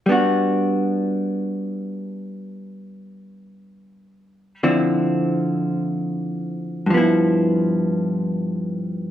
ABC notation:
X:1
M:4/4
L:1/8
Q:"Swing" 1/4=53
K:G
V:1 name="Hollow-body jazz guitar"
[G,B,DF]8 | [D,=F,CE]4 [G,,F,B,E]4 |]